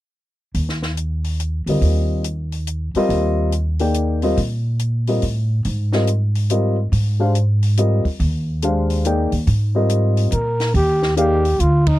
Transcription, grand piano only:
1.68 2.22 G3 soft
1.68 2.22 C4 soft
1.68 2.23 F4 soft
1.68 2.23 A#4 soft
1.68 2.23 D#5 soft
2.96 3.50 G3 medium
2.96 3.50 C4 medium
2.96 3.50 F4 medium
2.96 3.50 A#4 soft
2.96 3.50 D#5 medium
3.80 4.20 A#3 soft
3.80 4.20 D#4 soft
3.80 4.20 G#4 soft
3.80 4.20 D5 soft
3.80 4.20 G5 soft
4.23 4.36 G3 medium
4.23 4.36 C4 soft
4.23 4.36 F4 soft
4.23 4.36 A#4 soft
4.23 4.36 D#5 medium
5.08 5.21 G3 soft
5.08 5.21 C4 soft
5.08 5.21 F4 soft
5.08 5.21 A#4 soft
5.08 5.22 D#5 soft
5.93 6.06 G3 soft
5.93 6.06 C4 soft
5.93 6.06 F4 soft
5.93 6.07 A#4 soft
5.93 6.07 D#5 soft
6.50 6.75 G3 soft
6.50 6.75 C4 soft
6.50 6.75 F4 soft
6.50 6.75 A#4 soft
6.50 6.75 D#5 soft
7.20 7.33 G#3 soft
7.20 7.33 D4 soft
7.20 7.33 G4 soft
7.20 7.34 C5 soft
7.20 7.34 F5 medium
7.78 8.02 G3 soft
7.78 8.02 C4 soft
7.78 8.03 F4 soft
7.78 8.03 A#4 soft
7.78 8.03 D#5 soft
8.63 9.04 G#3 soft
8.63 9.04 D4 soft
8.63 9.04 G4 soft
8.63 9.04 C5 soft
8.63 9.04 F5 soft
9.05 9.30 A#3 soft
9.05 9.30 D#4 soft
9.05 9.30 G#4 soft
9.05 9.30 D5 soft
9.05 9.31 G5 medium
9.75 10.29 G3 soft
9.75 10.29 C4 soft
9.75 10.30 F4 soft
9.75 10.30 A#4 soft
9.75 10.30 D#5 medium
11.17 11.42 A#3 soft
11.17 11.42 D#4 soft
11.17 11.42 G#4 soft
11.17 11.42 D5 soft
11.17 11.42 F5 medium

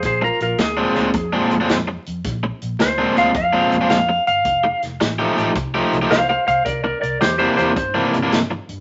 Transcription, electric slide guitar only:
0.05 0.22 G#4 medium
0.05 0.23 C5 medium
0.23 0.41 F4 medium
0.23 0.41 A#4 medium
0.42 0.58 F4 medium
0.42 0.59 A#4 medium
0.61 1.67 G#4 loud
2.82 3.16 C5 loud
3.18 3.35 F5 medium
3.36 3.89 F5 medium
3.90 4.26 F5 medium
4.27 4.81 F5 medium
6.11 6.28 C5 medium
6.11 6.28 F5 medium
6.29 6.46 C5 medium
6.29 6.47 F5 medium
6.47 6.64 C5 medium
6.47 6.66 F5 medium
6.65 6.83 A#4 medium
6.65 6.83 D5 medium
6.84 7.00 A#4 medium
6.84 7.00 D5 medium
7.01 7.19 A#4 medium
7.01 7.20 D5 medium
7.21 7.37 G4 medium
7.21 7.37 C5 medium
7.38 7.56 G4 medium
7.38 7.56 C5 medium
7.57 7.75 G4 medium
7.57 7.74 C5 medium
7.76 8.12 C5 medium

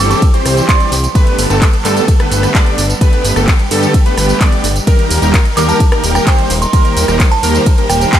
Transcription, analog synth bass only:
0.00 0.15 G1 loud
0.45 0.62 C2 medium
0.92 1.08 C2 medium
1.38 1.47 G1 loud
1.50 1.66 G1 loud
1.85 2.01 G2 medium
2.31 2.48 G1 medium
2.78 2.94 G1 medium
3.24 3.33 G1 loud
3.36 3.52 G1 loud
3.71 3.87 G2 loud
4.17 4.34 G1 medium
4.64 4.80 G1 medium
5.11 5.19 D#1 loud
5.22 5.38 D#1 loud
5.57 5.73 D#2 loud
6.04 6.20 D#1 medium
6.50 6.66 D#1 medium
6.96 7.05 D#1 loud
7.08 7.24 D#1 loud
7.43 7.59 D#2 loud
7.90 8.06 D#1 medium

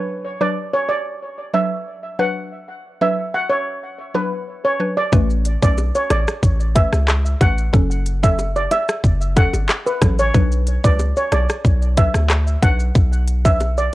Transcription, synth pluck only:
0.00 0.36 F#3 loud
0.00 0.37 D4 medium
0.00 0.37 B4 loud
0.41 0.56 F#3 medium
0.41 0.56 D4 medium
0.41 0.56 B4 medium
1.54 1.71 F#3 medium
1.54 1.71 D4 medium
1.54 1.71 B4 medium
2.19 2.49 F#3 medium
2.19 2.49 D4 medium
2.19 2.49 B4 medium
3.01 3.17 F#3 medium
3.01 3.17 D4 medium
3.01 3.17 B4 medium
4.14 4.32 F#3 medium
4.14 4.32 D4 medium
4.14 4.32 B4 medium
4.80 4.97 F#3 medium
4.80 4.97 D4 medium
4.80 4.97 B4 medium
5.12 5.58 A3 loud
5.12 5.58 C#4 medium
5.12 5.58 B4 loud
5.62 5.78 A3 medium
5.62 5.78 C#4 medium
5.62 5.78 B4 medium
6.75 6.93 A3 medium
6.75 6.93 C#4 medium
6.75 6.93 B4 medium
7.41 7.71 A3 medium
7.41 7.71 C#4 medium
7.41 7.71 B4 medium
7.73 8.19 F#3 loud
7.73 8.19 C#4 medium
7.73 8.19 A4 loud
8.23 8.38 F#3 medium
8.23 8.38 C#4 medium
8.23 8.39 A4 medium
9.36 9.53 F#3 medium
9.36 9.54 C#4 medium
9.36 9.54 A4 medium
10.02 10.19 F#3 medium
10.02 10.19 C#4 medium
10.02 10.19 A4 medium
10.34 10.80 F#3 loud
10.34 10.80 D4 medium
10.34 10.80 B4 loud
10.84 10.99 F#3 medium
10.84 10.99 D4 medium
10.84 11.00 B4 medium
11.97 12.14 F#3 medium
11.97 12.15 D4 medium
11.97 12.15 B4 medium
12.62 12.93 F#3 medium
12.62 12.93 D4 medium
12.62 12.93 B4 medium
13.45 13.60 F#3 medium
13.45 13.60 D4 medium
13.45 13.60 B4 medium

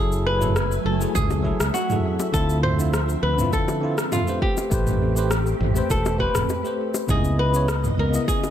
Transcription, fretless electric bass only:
0.00 0.77 F#1 medium
0.85 1.05 F#1 medium
1.15 1.51 C#2 medium
1.60 1.69 C#2 medium
2.34 3.15 D2 medium
3.23 3.42 D2 medium
4.71 5.52 A1 medium
5.60 5.80 A1 medium
5.90 6.26 E1 medium
6.35 6.45 E1 medium
7.09 7.90 C#2 medium
7.98 8.17 C#2 medium

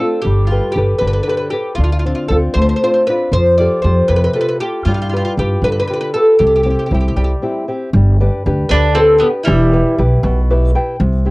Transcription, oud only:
0.00 0.21 A4 medium
0.22 0.47 G4 medium
0.47 0.73 F4 medium
0.72 0.98 G4 medium
0.99 1.06 B4 medium
1.08 1.12 B4 medium
1.13 1.22 B4 medium
1.23 1.28 B4 medium
1.29 1.36 B4 medium
1.37 1.47 B4 medium
1.50 1.75 G4 medium
1.75 1.82 F4 medium
1.84 1.91 F4 medium
1.92 1.98 F4 medium
1.99 2.05 F4 medium
2.06 2.14 F4 medium
2.15 2.23 F4 medium
2.28 2.36 A4 medium
2.54 2.61 C5 medium
2.62 2.68 C5 medium
2.69 2.75 C5 medium
2.76 2.83 C5 medium
2.84 2.93 C5 medium
2.94 3.02 C5 medium
3.07 3.33 B4 medium
3.33 3.57 C5 medium
3.58 3.82 D5 medium
3.82 4.07 C5 medium
4.08 4.15 B4 medium
4.16 4.23 B4 medium
4.24 4.32 B4 medium
4.33 4.39 B4 medium
4.41 4.47 B4 medium
4.48 4.55 B4 medium
4.60 4.84 G4 medium
4.85 4.93 F4 medium
4.94 5.00 F4 medium
5.02 5.08 F4 medium
5.09 5.15 F4 medium
5.16 5.23 F4 medium
5.25 5.32 F4 medium
5.39 5.62 G4 medium
5.64 5.71 B4 medium
5.72 5.78 B4 medium
5.80 5.86 B4 medium
5.87 5.92 B4 medium
5.93 5.99 B4 medium
6.01 6.09 B4 medium
6.14 6.38 A4 medium
6.39 6.45 G4 medium
6.47 6.54 G4 medium
6.56 6.62 G4 medium
6.63 6.69 G4 soft
6.70 6.77 G4 soft
6.79 6.85 G4 soft
6.86 6.93 G4 soft
6.94 6.99 G4 soft
7.01 7.07 G4 soft
7.08 7.15 G4 soft
7.17 7.23 G4 medium
7.24 7.31 G4 soft
8.69 8.94 B4 medium
8.95 9.18 A4 medium
9.18 9.26 G4 medium
9.43 9.99 E4 medium

